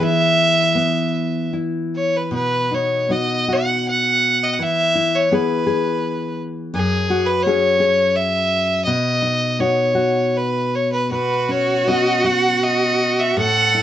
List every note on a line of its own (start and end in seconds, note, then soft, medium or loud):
0.00 2.33 E3 medium
0.00 0.75 B3 medium
0.00 2.33 G#4 medium
0.00 1.54 E5 loud
0.75 3.08 B3 medium
1.53 2.40 E4 soft
1.95 2.18 C#5 medium
2.17 2.34 B4 medium
2.31 4.59 B2 medium
2.31 2.76 B4 medium
2.71 3.09 D#4 soft
2.71 3.13 C#5 medium
3.09 5.31 B3 soft
3.09 4.67 D#4 soft
3.09 3.47 F#4 medium
3.09 3.55 D#5 medium
3.48 4.67 F#4 soft
3.53 3.88 F#5 medium
3.88 4.45 F#5 medium
4.43 4.55 D#5 medium
4.53 4.64 F#5 medium
4.59 6.75 E3 medium
4.59 5.17 E5 medium
4.95 5.31 E4 soft
5.15 5.35 C#5 medium
5.32 6.82 B3 medium
5.32 6.82 E4 soft
5.32 5.66 G#4 medium
5.32 6.40 B4 medium
5.67 7.13 G#4 medium
6.74 8.87 F#2 medium
6.74 7.28 G#4 medium
7.10 7.46 F#4 medium
7.27 7.44 B4 medium
7.43 8.95 C#4 medium
7.43 8.18 C#5 medium
7.47 9.22 F#4 medium
7.47 7.79 G#4 medium
7.80 8.94 G#4 medium
8.16 8.84 E5 medium
8.84 11.10 B2 medium
8.84 9.62 D#5 medium
9.22 9.59 D#4 medium
9.59 11.52 B3 soft
9.59 11.48 D#4 medium
9.59 9.94 F#4 medium
9.59 10.39 C#5 medium
9.95 11.88 F#4 soft
10.37 10.77 B4 medium
10.75 10.91 C#5 medium
10.92 11.10 B4 medium
11.11 13.36 B2 medium
11.11 13.38 F#4 medium
11.11 11.53 B4 medium
11.49 11.87 C#4 soft
11.49 11.89 C#5 medium
11.87 13.44 B3 soft
11.87 13.74 C#4 soft
11.87 12.23 F#4 medium
11.87 12.27 D#5 medium
12.24 13.44 F#4 medium
12.24 12.65 F#5 medium
12.63 13.21 D#5 medium
13.19 13.38 E5 medium
13.37 13.82 A2 medium
13.37 13.82 A4 loud
13.37 13.82 F#5 loud
13.75 13.82 E4 soft